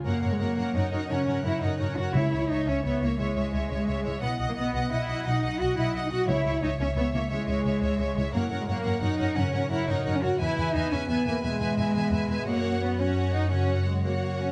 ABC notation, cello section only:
X:1
M:12/8
L:1/16
Q:3/8=116
K:F#mix
V:1 name="Cello section"
A,3 G, A,4 D4 C4 E2 D3 C F2 | E4 D2 C2 B,2 A,2 G,12 | B,3 A, B,4 E4 D4 F2 E3 D F2 | E4 D2 C2 B,2 A,2 G,12 |
A,3 G, A,4 D4 C4 E2 D3 C F2 | E4 D2 C2 B,2 A,2 G,12 | A,4 B,2 C4 D2 C4 G,2 A,4 C2 |]